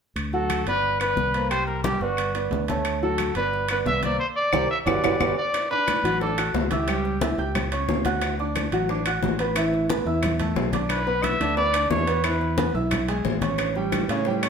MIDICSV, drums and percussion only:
0, 0, Header, 1, 2, 480
1, 0, Start_track
1, 0, Key_signature, 2, "major"
1, 0, Tempo, 335570
1, 233, Time_signature, 4, 2, 24, 8
1, 20727, End_track
2, 0, Start_track
2, 0, Title_t, "Drums"
2, 233, Note_on_c, 9, 65, 78
2, 234, Note_on_c, 9, 63, 26
2, 237, Note_on_c, 9, 75, 52
2, 376, Note_off_c, 9, 65, 0
2, 377, Note_off_c, 9, 63, 0
2, 380, Note_off_c, 9, 75, 0
2, 472, Note_on_c, 9, 63, 32
2, 615, Note_off_c, 9, 63, 0
2, 712, Note_on_c, 9, 65, 82
2, 714, Note_on_c, 9, 63, 58
2, 717, Note_on_c, 9, 75, 58
2, 855, Note_off_c, 9, 65, 0
2, 857, Note_off_c, 9, 63, 0
2, 860, Note_off_c, 9, 75, 0
2, 949, Note_on_c, 9, 63, 27
2, 954, Note_on_c, 9, 65, 63
2, 1092, Note_off_c, 9, 63, 0
2, 1097, Note_off_c, 9, 65, 0
2, 1197, Note_on_c, 9, 63, 31
2, 1340, Note_off_c, 9, 63, 0
2, 1429, Note_on_c, 9, 75, 59
2, 1442, Note_on_c, 9, 63, 33
2, 1442, Note_on_c, 9, 65, 86
2, 1572, Note_off_c, 9, 75, 0
2, 1585, Note_off_c, 9, 63, 0
2, 1585, Note_off_c, 9, 65, 0
2, 1673, Note_on_c, 9, 63, 80
2, 1816, Note_off_c, 9, 63, 0
2, 1921, Note_on_c, 9, 65, 60
2, 2064, Note_off_c, 9, 65, 0
2, 2157, Note_on_c, 9, 63, 28
2, 2157, Note_on_c, 9, 75, 57
2, 2160, Note_on_c, 9, 65, 81
2, 2300, Note_off_c, 9, 75, 0
2, 2301, Note_off_c, 9, 63, 0
2, 2303, Note_off_c, 9, 65, 0
2, 2402, Note_on_c, 9, 63, 31
2, 2545, Note_off_c, 9, 63, 0
2, 2634, Note_on_c, 9, 63, 96
2, 2646, Note_on_c, 9, 65, 60
2, 2777, Note_off_c, 9, 63, 0
2, 2789, Note_off_c, 9, 65, 0
2, 2875, Note_on_c, 9, 63, 29
2, 3018, Note_off_c, 9, 63, 0
2, 3106, Note_on_c, 9, 75, 60
2, 3121, Note_on_c, 9, 65, 80
2, 3122, Note_on_c, 9, 63, 29
2, 3249, Note_off_c, 9, 75, 0
2, 3264, Note_off_c, 9, 65, 0
2, 3265, Note_off_c, 9, 63, 0
2, 3359, Note_on_c, 9, 65, 65
2, 3364, Note_on_c, 9, 63, 36
2, 3502, Note_off_c, 9, 65, 0
2, 3507, Note_off_c, 9, 63, 0
2, 3591, Note_on_c, 9, 66, 66
2, 3613, Note_on_c, 9, 63, 73
2, 3734, Note_off_c, 9, 66, 0
2, 3756, Note_off_c, 9, 63, 0
2, 3838, Note_on_c, 9, 65, 61
2, 3858, Note_on_c, 9, 63, 91
2, 3981, Note_off_c, 9, 65, 0
2, 4001, Note_off_c, 9, 63, 0
2, 4074, Note_on_c, 9, 65, 81
2, 4077, Note_on_c, 9, 75, 58
2, 4100, Note_on_c, 9, 63, 26
2, 4217, Note_off_c, 9, 65, 0
2, 4220, Note_off_c, 9, 75, 0
2, 4243, Note_off_c, 9, 63, 0
2, 4329, Note_on_c, 9, 63, 32
2, 4472, Note_off_c, 9, 63, 0
2, 4551, Note_on_c, 9, 65, 85
2, 4557, Note_on_c, 9, 75, 61
2, 4578, Note_on_c, 9, 63, 56
2, 4694, Note_off_c, 9, 65, 0
2, 4700, Note_off_c, 9, 75, 0
2, 4721, Note_off_c, 9, 63, 0
2, 4792, Note_on_c, 9, 65, 63
2, 4813, Note_on_c, 9, 63, 30
2, 4935, Note_off_c, 9, 65, 0
2, 4956, Note_off_c, 9, 63, 0
2, 5057, Note_on_c, 9, 63, 30
2, 5200, Note_off_c, 9, 63, 0
2, 5271, Note_on_c, 9, 65, 87
2, 5280, Note_on_c, 9, 75, 69
2, 5293, Note_on_c, 9, 63, 34
2, 5414, Note_off_c, 9, 65, 0
2, 5423, Note_off_c, 9, 75, 0
2, 5436, Note_off_c, 9, 63, 0
2, 5517, Note_on_c, 9, 66, 61
2, 5525, Note_on_c, 9, 63, 80
2, 5660, Note_off_c, 9, 66, 0
2, 5669, Note_off_c, 9, 63, 0
2, 5759, Note_on_c, 9, 65, 67
2, 5767, Note_on_c, 9, 63, 76
2, 5902, Note_off_c, 9, 65, 0
2, 5910, Note_off_c, 9, 63, 0
2, 6474, Note_on_c, 9, 75, 92
2, 6475, Note_on_c, 9, 65, 85
2, 6485, Note_on_c, 9, 63, 94
2, 6617, Note_off_c, 9, 75, 0
2, 6618, Note_off_c, 9, 65, 0
2, 6628, Note_off_c, 9, 63, 0
2, 6959, Note_on_c, 9, 65, 90
2, 6967, Note_on_c, 9, 63, 86
2, 6973, Note_on_c, 9, 75, 85
2, 7103, Note_off_c, 9, 65, 0
2, 7110, Note_off_c, 9, 63, 0
2, 7116, Note_off_c, 9, 75, 0
2, 7205, Note_on_c, 9, 65, 101
2, 7212, Note_on_c, 9, 63, 91
2, 7214, Note_on_c, 9, 75, 88
2, 7348, Note_off_c, 9, 65, 0
2, 7355, Note_off_c, 9, 63, 0
2, 7357, Note_off_c, 9, 75, 0
2, 7444, Note_on_c, 9, 65, 91
2, 7447, Note_on_c, 9, 63, 92
2, 7448, Note_on_c, 9, 75, 91
2, 7587, Note_off_c, 9, 65, 0
2, 7590, Note_off_c, 9, 63, 0
2, 7591, Note_off_c, 9, 75, 0
2, 7925, Note_on_c, 9, 60, 65
2, 7929, Note_on_c, 9, 63, 32
2, 7929, Note_on_c, 9, 65, 84
2, 7932, Note_on_c, 9, 75, 61
2, 8068, Note_off_c, 9, 60, 0
2, 8072, Note_off_c, 9, 63, 0
2, 8072, Note_off_c, 9, 65, 0
2, 8075, Note_off_c, 9, 75, 0
2, 8164, Note_on_c, 9, 60, 32
2, 8171, Note_on_c, 9, 63, 34
2, 8307, Note_off_c, 9, 60, 0
2, 8314, Note_off_c, 9, 63, 0
2, 8403, Note_on_c, 9, 60, 55
2, 8403, Note_on_c, 9, 75, 63
2, 8408, Note_on_c, 9, 65, 84
2, 8409, Note_on_c, 9, 63, 60
2, 8546, Note_off_c, 9, 60, 0
2, 8546, Note_off_c, 9, 75, 0
2, 8551, Note_off_c, 9, 65, 0
2, 8552, Note_off_c, 9, 63, 0
2, 8640, Note_on_c, 9, 60, 33
2, 8655, Note_on_c, 9, 63, 35
2, 8656, Note_on_c, 9, 65, 67
2, 8783, Note_off_c, 9, 60, 0
2, 8798, Note_off_c, 9, 63, 0
2, 8799, Note_off_c, 9, 65, 0
2, 8885, Note_on_c, 9, 63, 34
2, 8889, Note_on_c, 9, 60, 60
2, 9028, Note_off_c, 9, 63, 0
2, 9032, Note_off_c, 9, 60, 0
2, 9121, Note_on_c, 9, 63, 34
2, 9125, Note_on_c, 9, 65, 96
2, 9133, Note_on_c, 9, 75, 70
2, 9264, Note_off_c, 9, 63, 0
2, 9268, Note_off_c, 9, 65, 0
2, 9276, Note_off_c, 9, 75, 0
2, 9362, Note_on_c, 9, 60, 70
2, 9362, Note_on_c, 9, 61, 93
2, 9362, Note_on_c, 9, 66, 65
2, 9363, Note_on_c, 9, 63, 81
2, 9505, Note_off_c, 9, 60, 0
2, 9505, Note_off_c, 9, 61, 0
2, 9505, Note_off_c, 9, 66, 0
2, 9506, Note_off_c, 9, 63, 0
2, 9594, Note_on_c, 9, 65, 72
2, 9604, Note_on_c, 9, 60, 29
2, 9606, Note_on_c, 9, 63, 82
2, 9737, Note_off_c, 9, 65, 0
2, 9747, Note_off_c, 9, 60, 0
2, 9749, Note_off_c, 9, 63, 0
2, 9836, Note_on_c, 9, 65, 84
2, 9842, Note_on_c, 9, 60, 66
2, 9845, Note_on_c, 9, 63, 30
2, 9854, Note_on_c, 9, 75, 61
2, 9979, Note_off_c, 9, 65, 0
2, 9985, Note_off_c, 9, 60, 0
2, 9988, Note_off_c, 9, 63, 0
2, 9997, Note_off_c, 9, 75, 0
2, 10086, Note_on_c, 9, 63, 37
2, 10090, Note_on_c, 9, 60, 30
2, 10229, Note_off_c, 9, 63, 0
2, 10233, Note_off_c, 9, 60, 0
2, 10319, Note_on_c, 9, 63, 94
2, 10323, Note_on_c, 9, 65, 71
2, 10324, Note_on_c, 9, 60, 49
2, 10462, Note_off_c, 9, 63, 0
2, 10466, Note_off_c, 9, 65, 0
2, 10467, Note_off_c, 9, 60, 0
2, 10560, Note_on_c, 9, 60, 34
2, 10562, Note_on_c, 9, 63, 34
2, 10703, Note_off_c, 9, 60, 0
2, 10705, Note_off_c, 9, 63, 0
2, 10802, Note_on_c, 9, 65, 84
2, 10803, Note_on_c, 9, 75, 64
2, 10804, Note_on_c, 9, 63, 33
2, 10804, Note_on_c, 9, 64, 84
2, 10811, Note_on_c, 9, 60, 57
2, 10945, Note_off_c, 9, 65, 0
2, 10946, Note_off_c, 9, 75, 0
2, 10947, Note_off_c, 9, 63, 0
2, 10947, Note_off_c, 9, 64, 0
2, 10954, Note_off_c, 9, 60, 0
2, 11041, Note_on_c, 9, 65, 71
2, 11054, Note_on_c, 9, 63, 36
2, 11184, Note_off_c, 9, 65, 0
2, 11197, Note_off_c, 9, 63, 0
2, 11280, Note_on_c, 9, 60, 70
2, 11280, Note_on_c, 9, 61, 82
2, 11282, Note_on_c, 9, 63, 80
2, 11423, Note_off_c, 9, 60, 0
2, 11423, Note_off_c, 9, 61, 0
2, 11425, Note_off_c, 9, 63, 0
2, 11511, Note_on_c, 9, 65, 68
2, 11512, Note_on_c, 9, 60, 32
2, 11522, Note_on_c, 9, 63, 90
2, 11654, Note_off_c, 9, 65, 0
2, 11655, Note_off_c, 9, 60, 0
2, 11665, Note_off_c, 9, 63, 0
2, 11751, Note_on_c, 9, 65, 84
2, 11758, Note_on_c, 9, 60, 66
2, 11764, Note_on_c, 9, 75, 59
2, 11765, Note_on_c, 9, 63, 29
2, 11894, Note_off_c, 9, 65, 0
2, 11901, Note_off_c, 9, 60, 0
2, 11907, Note_off_c, 9, 75, 0
2, 11908, Note_off_c, 9, 63, 0
2, 12002, Note_on_c, 9, 60, 34
2, 12009, Note_on_c, 9, 63, 35
2, 12145, Note_off_c, 9, 60, 0
2, 12152, Note_off_c, 9, 63, 0
2, 12238, Note_on_c, 9, 65, 87
2, 12242, Note_on_c, 9, 60, 50
2, 12242, Note_on_c, 9, 75, 69
2, 12251, Note_on_c, 9, 63, 62
2, 12381, Note_off_c, 9, 65, 0
2, 12385, Note_off_c, 9, 60, 0
2, 12385, Note_off_c, 9, 75, 0
2, 12394, Note_off_c, 9, 63, 0
2, 12477, Note_on_c, 9, 65, 63
2, 12481, Note_on_c, 9, 60, 38
2, 12499, Note_on_c, 9, 63, 33
2, 12620, Note_off_c, 9, 65, 0
2, 12624, Note_off_c, 9, 60, 0
2, 12642, Note_off_c, 9, 63, 0
2, 12720, Note_on_c, 9, 60, 64
2, 12731, Note_on_c, 9, 63, 33
2, 12863, Note_off_c, 9, 60, 0
2, 12874, Note_off_c, 9, 63, 0
2, 12954, Note_on_c, 9, 65, 90
2, 12955, Note_on_c, 9, 75, 67
2, 12975, Note_on_c, 9, 63, 36
2, 13097, Note_off_c, 9, 65, 0
2, 13098, Note_off_c, 9, 75, 0
2, 13118, Note_off_c, 9, 63, 0
2, 13197, Note_on_c, 9, 60, 68
2, 13197, Note_on_c, 9, 61, 87
2, 13211, Note_on_c, 9, 63, 85
2, 13340, Note_off_c, 9, 60, 0
2, 13340, Note_off_c, 9, 61, 0
2, 13354, Note_off_c, 9, 63, 0
2, 13432, Note_on_c, 9, 65, 70
2, 13438, Note_on_c, 9, 60, 34
2, 13576, Note_off_c, 9, 65, 0
2, 13581, Note_off_c, 9, 60, 0
2, 13668, Note_on_c, 9, 60, 65
2, 13671, Note_on_c, 9, 75, 68
2, 13674, Note_on_c, 9, 65, 94
2, 13687, Note_on_c, 9, 63, 29
2, 13812, Note_off_c, 9, 60, 0
2, 13814, Note_off_c, 9, 75, 0
2, 13817, Note_off_c, 9, 65, 0
2, 13830, Note_off_c, 9, 63, 0
2, 13908, Note_on_c, 9, 60, 33
2, 13927, Note_on_c, 9, 63, 36
2, 14051, Note_off_c, 9, 60, 0
2, 14070, Note_off_c, 9, 63, 0
2, 14154, Note_on_c, 9, 65, 65
2, 14155, Note_on_c, 9, 60, 53
2, 14162, Note_on_c, 9, 63, 97
2, 14297, Note_off_c, 9, 65, 0
2, 14298, Note_off_c, 9, 60, 0
2, 14305, Note_off_c, 9, 63, 0
2, 14389, Note_on_c, 9, 60, 37
2, 14400, Note_on_c, 9, 63, 30
2, 14532, Note_off_c, 9, 60, 0
2, 14543, Note_off_c, 9, 63, 0
2, 14626, Note_on_c, 9, 75, 58
2, 14629, Note_on_c, 9, 60, 61
2, 14629, Note_on_c, 9, 65, 82
2, 14647, Note_on_c, 9, 63, 32
2, 14647, Note_on_c, 9, 64, 79
2, 14769, Note_off_c, 9, 75, 0
2, 14772, Note_off_c, 9, 60, 0
2, 14772, Note_off_c, 9, 65, 0
2, 14790, Note_off_c, 9, 63, 0
2, 14790, Note_off_c, 9, 64, 0
2, 14869, Note_on_c, 9, 65, 69
2, 14881, Note_on_c, 9, 63, 34
2, 14881, Note_on_c, 9, 64, 69
2, 15012, Note_off_c, 9, 65, 0
2, 15024, Note_off_c, 9, 63, 0
2, 15024, Note_off_c, 9, 64, 0
2, 15108, Note_on_c, 9, 63, 80
2, 15111, Note_on_c, 9, 60, 76
2, 15111, Note_on_c, 9, 61, 86
2, 15111, Note_on_c, 9, 66, 65
2, 15251, Note_off_c, 9, 63, 0
2, 15254, Note_off_c, 9, 60, 0
2, 15254, Note_off_c, 9, 61, 0
2, 15254, Note_off_c, 9, 66, 0
2, 15347, Note_on_c, 9, 63, 88
2, 15353, Note_on_c, 9, 65, 68
2, 15355, Note_on_c, 9, 60, 35
2, 15490, Note_off_c, 9, 63, 0
2, 15496, Note_off_c, 9, 65, 0
2, 15498, Note_off_c, 9, 60, 0
2, 15581, Note_on_c, 9, 75, 61
2, 15588, Note_on_c, 9, 65, 89
2, 15590, Note_on_c, 9, 60, 69
2, 15590, Note_on_c, 9, 63, 31
2, 15724, Note_off_c, 9, 75, 0
2, 15731, Note_off_c, 9, 65, 0
2, 15733, Note_off_c, 9, 60, 0
2, 15733, Note_off_c, 9, 63, 0
2, 15828, Note_on_c, 9, 60, 33
2, 15834, Note_on_c, 9, 63, 33
2, 15971, Note_off_c, 9, 60, 0
2, 15977, Note_off_c, 9, 63, 0
2, 16056, Note_on_c, 9, 75, 64
2, 16068, Note_on_c, 9, 60, 53
2, 16073, Note_on_c, 9, 63, 63
2, 16079, Note_on_c, 9, 65, 81
2, 16199, Note_off_c, 9, 75, 0
2, 16211, Note_off_c, 9, 60, 0
2, 16216, Note_off_c, 9, 63, 0
2, 16222, Note_off_c, 9, 65, 0
2, 16316, Note_on_c, 9, 60, 34
2, 16318, Note_on_c, 9, 65, 66
2, 16321, Note_on_c, 9, 63, 34
2, 16459, Note_off_c, 9, 60, 0
2, 16461, Note_off_c, 9, 65, 0
2, 16464, Note_off_c, 9, 63, 0
2, 16552, Note_on_c, 9, 60, 57
2, 16561, Note_on_c, 9, 63, 34
2, 16695, Note_off_c, 9, 60, 0
2, 16704, Note_off_c, 9, 63, 0
2, 16784, Note_on_c, 9, 75, 68
2, 16787, Note_on_c, 9, 63, 36
2, 16792, Note_on_c, 9, 65, 98
2, 16927, Note_off_c, 9, 75, 0
2, 16930, Note_off_c, 9, 63, 0
2, 16935, Note_off_c, 9, 65, 0
2, 17030, Note_on_c, 9, 63, 81
2, 17031, Note_on_c, 9, 60, 75
2, 17031, Note_on_c, 9, 61, 92
2, 17173, Note_off_c, 9, 63, 0
2, 17174, Note_off_c, 9, 60, 0
2, 17174, Note_off_c, 9, 61, 0
2, 17271, Note_on_c, 9, 65, 69
2, 17280, Note_on_c, 9, 60, 31
2, 17414, Note_off_c, 9, 65, 0
2, 17423, Note_off_c, 9, 60, 0
2, 17505, Note_on_c, 9, 65, 91
2, 17511, Note_on_c, 9, 75, 68
2, 17514, Note_on_c, 9, 60, 73
2, 17520, Note_on_c, 9, 63, 30
2, 17648, Note_off_c, 9, 65, 0
2, 17654, Note_off_c, 9, 75, 0
2, 17657, Note_off_c, 9, 60, 0
2, 17663, Note_off_c, 9, 63, 0
2, 17752, Note_on_c, 9, 63, 37
2, 17761, Note_on_c, 9, 60, 33
2, 17895, Note_off_c, 9, 63, 0
2, 17904, Note_off_c, 9, 60, 0
2, 17989, Note_on_c, 9, 63, 95
2, 17991, Note_on_c, 9, 65, 66
2, 17997, Note_on_c, 9, 60, 53
2, 18132, Note_off_c, 9, 63, 0
2, 18134, Note_off_c, 9, 65, 0
2, 18140, Note_off_c, 9, 60, 0
2, 18235, Note_on_c, 9, 60, 35
2, 18240, Note_on_c, 9, 63, 32
2, 18378, Note_off_c, 9, 60, 0
2, 18383, Note_off_c, 9, 63, 0
2, 18466, Note_on_c, 9, 60, 56
2, 18471, Note_on_c, 9, 65, 83
2, 18473, Note_on_c, 9, 75, 62
2, 18486, Note_on_c, 9, 63, 35
2, 18486, Note_on_c, 9, 64, 76
2, 18610, Note_off_c, 9, 60, 0
2, 18614, Note_off_c, 9, 65, 0
2, 18616, Note_off_c, 9, 75, 0
2, 18629, Note_off_c, 9, 63, 0
2, 18629, Note_off_c, 9, 64, 0
2, 18717, Note_on_c, 9, 65, 67
2, 18722, Note_on_c, 9, 63, 34
2, 18860, Note_off_c, 9, 65, 0
2, 18865, Note_off_c, 9, 63, 0
2, 18949, Note_on_c, 9, 60, 72
2, 18949, Note_on_c, 9, 61, 84
2, 18958, Note_on_c, 9, 63, 77
2, 19092, Note_off_c, 9, 60, 0
2, 19092, Note_off_c, 9, 61, 0
2, 19101, Note_off_c, 9, 63, 0
2, 19190, Note_on_c, 9, 63, 96
2, 19194, Note_on_c, 9, 60, 33
2, 19195, Note_on_c, 9, 65, 73
2, 19333, Note_off_c, 9, 63, 0
2, 19337, Note_off_c, 9, 60, 0
2, 19338, Note_off_c, 9, 65, 0
2, 19428, Note_on_c, 9, 60, 68
2, 19434, Note_on_c, 9, 65, 88
2, 19436, Note_on_c, 9, 75, 64
2, 19442, Note_on_c, 9, 63, 31
2, 19571, Note_off_c, 9, 60, 0
2, 19577, Note_off_c, 9, 65, 0
2, 19579, Note_off_c, 9, 75, 0
2, 19585, Note_off_c, 9, 63, 0
2, 19671, Note_on_c, 9, 60, 33
2, 19678, Note_on_c, 9, 63, 36
2, 19814, Note_off_c, 9, 60, 0
2, 19822, Note_off_c, 9, 63, 0
2, 19913, Note_on_c, 9, 60, 55
2, 19917, Note_on_c, 9, 65, 88
2, 19917, Note_on_c, 9, 75, 66
2, 19924, Note_on_c, 9, 63, 61
2, 20056, Note_off_c, 9, 60, 0
2, 20060, Note_off_c, 9, 65, 0
2, 20060, Note_off_c, 9, 75, 0
2, 20067, Note_off_c, 9, 63, 0
2, 20152, Note_on_c, 9, 60, 33
2, 20159, Note_on_c, 9, 65, 71
2, 20161, Note_on_c, 9, 63, 34
2, 20295, Note_off_c, 9, 60, 0
2, 20302, Note_off_c, 9, 65, 0
2, 20304, Note_off_c, 9, 63, 0
2, 20384, Note_on_c, 9, 60, 66
2, 20397, Note_on_c, 9, 63, 35
2, 20527, Note_off_c, 9, 60, 0
2, 20540, Note_off_c, 9, 63, 0
2, 20637, Note_on_c, 9, 75, 71
2, 20640, Note_on_c, 9, 65, 92
2, 20646, Note_on_c, 9, 63, 36
2, 20727, Note_off_c, 9, 63, 0
2, 20727, Note_off_c, 9, 65, 0
2, 20727, Note_off_c, 9, 75, 0
2, 20727, End_track
0, 0, End_of_file